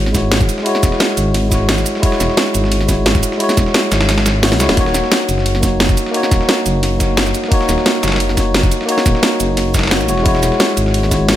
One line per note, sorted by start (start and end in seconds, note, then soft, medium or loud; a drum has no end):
0.00 0.48 G#1 medium
0.00 0.10 G#3 loud
0.00 0.12 E4 medium
0.00 0.13 F#4 medium
0.00 0.14 C#5 loud
0.06 snare soft
0.12 0.62 G#3 medium
0.12 0.64 E4 medium
0.12 0.65 F#4 medium
0.12 kick medium
0.12 snare soft
0.12 closed hi-hat medium
0.12 ride medium
0.12 shaker medium
0.18 0.66 C#5 medium
0.32 snare loud
0.32 closed hi-hat medium
0.32 ride medium
0.41 kick loud
0.41 snare soft
0.41 shaker soft
0.49 closed hi-hat medium
0.49 ride medium
0.49 shaker medium
0.58 snare soft
0.63 1.47 G#3 loud
0.63 1.49 E4 medium
0.63 1.50 F#4 medium
0.63 closed hi-hat medium
0.63 ride medium
0.69 1.51 C#5 loud
0.75 snare medium
0.83 0.91 E1 loud
0.83 kick loud
0.83 snare soft
0.83 closed hi-hat medium
0.83 ride medium
0.83 shaker medium
0.92 snare soft
1.00 snare loud
1.00 closed hi-hat loud
1.00 ride medium
1.17 1.85 G#1 medium
1.17 closed hi-hat medium
1.17 open hi-hat medium
1.17 ride medium
1.17 shaker medium
1.34 snare soft
1.34 closed hi-hat medium
1.34 ride medium
1.49 1.99 G#3 medium
1.49 2.01 E4 medium
1.49 2.02 F#4 medium
1.49 kick medium
1.49 snare soft
1.49 closed hi-hat medium
1.49 ride medium
1.49 shaker medium
1.55 2.03 C#5 medium
1.69 snare loud
1.69 closed hi-hat loud
1.69 closed hi-hat medium
1.69 ride medium
1.78 snare medium
1.78 shaker soft
1.86 closed hi-hat medium
1.86 ride medium
1.86 shaker medium
1.95 snare soft
2.00 2.85 G#3 loud
2.00 2.86 E4 medium
2.00 kick loud
2.00 closed hi-hat medium
2.00 ride medium
2.04 2.87 F#4 medium
2.04 2.88 C#5 loud
2.12 snare medium
2.20 2.28 E1 loud
2.20 snare soft
2.20 closed hi-hat medium
2.20 ride medium
2.20 shaker medium
2.30 snare soft
2.37 snare loud
2.37 closed hi-hat loud
2.37 ride medium
2.54 3.22 G#1 medium
2.54 closed hi-hat medium
2.54 ride medium
2.54 shaker medium
2.64 snare soft
2.72 closed hi-hat loud
2.72 closed hi-hat medium
2.72 ride medium
2.81 snare soft
2.86 3.36 G#3 medium
2.86 3.38 E4 medium
2.86 3.39 F#4 medium
2.86 kick medium
2.86 snare soft
2.86 closed hi-hat medium
2.86 ride medium
2.86 shaker medium
2.92 3.40 C#5 medium
3.06 snare loud
3.06 closed hi-hat loud
3.06 closed hi-hat medium
3.06 ride medium
3.15 kick loud
3.15 snare soft
3.15 shaker soft
3.23 closed hi-hat medium
3.23 ride medium
3.23 shaker medium
3.32 snare soft
3.38 4.23 G#3 loud
3.38 4.24 E4 medium
3.38 4.25 F#4 medium
3.38 closed hi-hat loud
3.38 closed hi-hat medium
3.38 ride medium
3.44 4.26 C#5 loud
3.49 snare soft
3.49 snare medium
3.49 shaker soft
3.57 3.65 E1 loud
3.57 kick loud
3.57 snare soft
3.57 closed hi-hat medium
3.57 ride medium
3.57 shaker medium
3.66 snare soft
3.74 snare loud
3.74 closed hi-hat medium
3.74 closed hi-hat loud
3.74 ride medium
3.92 4.54 G#1 medium
3.92 snare loud
3.92 closed hi-hat medium
3.92 open hi-hat medium
3.92 ride medium
3.92 shaker medium
4.01 snare loud
4.01 closed hi-hat medium
4.09 snare loud
4.09 snare soft
4.09 closed hi-hat loud
4.09 closed hi-hat medium
4.09 ride medium
4.18 snare loud
4.18 closed hi-hat medium
4.26 snare loud
4.26 closed hi-hat medium
4.26 ride medium
4.26 shaker medium
4.35 snare soft
4.42 4.58 G#3 medium
4.42 4.58 E4 medium
4.42 4.59 F#4 medium
4.42 4.59 C#5 medium
4.42 snare loud
4.42 closed hi-hat loud
4.42 ride medium
4.52 4.62 B1 medium
4.52 snare medium
4.52 shaker soft
4.59 4.68 C#2 medium
4.59 4.75 G#3 medium
4.59 4.75 E4 medium
4.59 4.76 F#4 medium
4.59 4.76 C#5 medium
4.59 snare loud
4.59 closed hi-hat medium
4.59 ride medium
4.59 shaker medium
4.69 4.93 D#1 medium
4.69 snare loud
4.69 closed hi-hat medium
4.75 5.59 A#3 loud
4.75 5.61 D#4 medium
4.75 5.62 F#4 medium
4.75 kick loud
4.75 closed hi-hat loud
4.75 closed hi-hat medium
4.75 ride medium
4.81 5.63 C#5 loud
4.86 snare medium
4.94 5.03 D#1 loud
4.94 snare medium
4.94 closed hi-hat medium
4.94 ride medium
4.94 shaker medium
5.04 snare soft
5.12 snare loud
5.12 closed hi-hat loud
5.12 closed hi-hat medium
5.12 ride medium
5.29 5.96 F#1 medium
5.29 closed hi-hat medium
5.29 ride medium
5.29 shaker medium
5.38 snare soft
5.46 closed hi-hat loud
5.46 closed hi-hat medium
5.46 ride medium
5.55 snare soft
5.60 6.10 A#3 medium
5.60 6.12 D#4 medium
5.60 6.13 F#4 medium
5.60 kick medium
5.60 snare soft
5.60 closed hi-hat medium
5.60 ride medium
5.60 shaker medium
5.66 6.14 C#5 medium
5.80 snare loud
5.80 closed hi-hat loud
5.80 closed hi-hat medium
5.80 ride medium
5.89 kick loud
5.89 snare soft
5.89 shaker soft
5.97 closed hi-hat medium
5.97 ride medium
5.97 shaker medium
6.06 snare soft
6.11 6.96 A#3 loud
6.11 6.98 D#4 loud
6.11 6.99 F#4 medium
6.11 closed hi-hat medium
6.11 ride medium
6.17 7.00 C#5 loud
6.23 snare medium
6.31 6.40 D#1 loud
6.31 kick loud
6.31 snare medium
6.31 closed hi-hat medium
6.31 ride soft
6.31 shaker medium
6.41 snare soft
6.49 snare loud
6.49 closed hi-hat medium
6.49 closed hi-hat loud
6.49 ride medium
6.66 7.33 F#1 medium
6.66 closed hi-hat medium
6.66 open hi-hat medium
6.66 ride medium
6.66 shaker medium
6.83 snare soft
6.83 closed hi-hat medium
6.83 ride medium
6.97 7.47 A#3 medium
6.97 7.49 D#4 medium
6.97 7.50 F#4 medium
6.97 kick medium
6.97 snare soft
6.97 closed hi-hat medium
6.97 ride medium
6.97 shaker medium
7.03 7.51 C#5 medium
7.17 snare loud
7.17 closed hi-hat loud
7.17 closed hi-hat medium
7.17 ride medium
7.26 snare medium
7.26 shaker soft
7.34 closed hi-hat medium
7.34 ride soft
7.34 shaker medium
7.44 snare soft
7.48 8.33 A#3 loud
7.48 8.35 D#4 medium
7.48 8.36 F#4 loud
7.48 kick loud
7.48 closed hi-hat medium
7.48 ride medium
7.54 8.37 C#5 loud
7.61 snare medium
7.69 7.77 D#1 loud
7.69 snare soft
7.69 closed hi-hat medium
7.69 ride medium
7.69 shaker medium
7.78 snare soft
7.86 snare loud
7.86 closed hi-hat medium
7.86 ride medium
8.03 8.70 F#1 medium
8.03 snare medium
8.03 closed hi-hat medium
8.03 ride medium
8.03 shaker medium
8.08 snare medium
8.08 closed hi-hat medium
8.12 snare medium
8.12 closed hi-hat medium
8.16 snare medium
8.16 closed hi-hat medium
8.20 closed hi-hat medium
8.20 ride medium
8.29 snare soft
8.34 8.85 A#3 medium
8.34 8.86 D#4 medium
8.34 kick medium
8.34 snare soft
8.34 closed hi-hat medium
8.34 ride medium
8.34 shaker medium
8.38 8.87 F#4 medium
8.38 8.88 C#5 medium
8.54 snare loud
8.54 closed hi-hat medium
8.54 ride medium
8.63 kick loud
8.63 snare soft
8.63 shaker soft
8.71 closed hi-hat medium
8.71 ride medium
8.71 shaker medium
8.81 snare soft
8.86 9.71 A#3 loud
8.86 9.72 D#4 loud
8.86 9.73 F#4 medium
8.86 closed hi-hat medium
8.86 ride medium
8.92 9.74 C#5 loud
8.98 snare soft
8.98 snare medium
9.06 9.14 D#1 loud
9.06 kick loud
9.06 snare soft
9.06 closed hi-hat medium
9.06 ride medium
9.06 shaker medium
9.15 snare soft
9.23 snare loud
9.23 closed hi-hat medium
9.23 closed hi-hat loud
9.23 ride medium
9.40 10.02 F#1 medium
9.40 closed hi-hat medium
9.40 open hi-hat medium
9.40 ride medium
9.40 shaker medium
9.57 snare soft
9.57 closed hi-hat medium
9.57 ride medium
9.74 kick medium
9.74 snare medium
9.74 closed hi-hat medium
9.74 ride medium
9.74 shaker medium
9.79 snare medium
9.79 closed hi-hat medium
9.83 snare medium
9.83 closed hi-hat medium
9.87 10.06 A#3 medium
9.87 10.07 D#4 medium
9.87 snare medium
9.87 closed hi-hat medium
9.91 10.07 F#4 medium
9.91 10.08 C#5 medium
9.91 snare loud
9.91 closed hi-hat medium
9.91 ride medium
10.00 10.10 A#1 medium
10.00 snare medium
10.00 shaker soft
10.07 10.17 E1 medium
10.07 10.21 G#3 medium
10.07 10.24 E4 medium
10.07 10.24 F#4 medium
10.07 10.25 C#5 medium
10.07 closed hi-hat medium
10.07 ride medium
10.07 shaker medium
10.18 10.42 E1 medium
10.18 snare soft
10.23 11.07 G#3 loud
10.23 11.09 E4 loud
10.23 11.10 F#4 medium
10.23 kick loud
10.23 closed hi-hat medium
10.23 ride medium
10.29 11.11 C#5 loud
10.35 snare medium
10.43 10.51 E1 loud
10.43 snare soft
10.43 closed hi-hat medium
10.43 ride medium
10.43 shaker medium
10.52 snare soft
10.60 snare loud
10.60 closed hi-hat medium
10.60 ride medium
10.77 11.36 G#1 medium
10.77 closed hi-hat medium
10.77 ride medium
10.77 shaker medium
10.86 snare soft
10.94 closed hi-hat medium
10.94 ride medium
11.03 snare soft
11.08 11.36 G#3 medium
11.08 11.36 E4 medium
11.08 kick medium
11.08 snare soft
11.08 closed hi-hat medium
11.08 ride medium
11.08 shaker medium
11.13 11.36 F#4 medium
11.13 11.36 C#5 medium
11.29 snare loud
11.29 closed hi-hat medium
11.29 ride medium